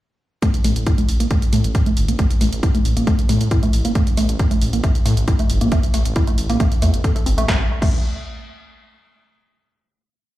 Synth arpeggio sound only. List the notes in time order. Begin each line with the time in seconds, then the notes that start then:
0.42 A3
0.64 A3
0.87 E4
0.98 A3
1.20 A#3
1.31 A3
1.53 A3
1.75 E4
1.86 A3
2.08 A#3
2.19 A3
2.41 A3
2.63 E4
2.75 A3
2.97 A#3
3.07 A3
3.29 A3
3.51 E4
3.63 A3
3.85 A#3
3.95 A3
4.17 A3
4.40 E4
4.51 A3
4.73 A#3
4.84 A3
5.06 A3
5.28 E4
5.39 A3
5.61 A#3
5.72 A3
5.94 A3
6.16 E4
6.28 A3
6.50 A#3
6.60 A3
6.82 A3
7.04 A4
7.16 A4
7.26 C4
7.38 A3
7.48 A3
7.82 A3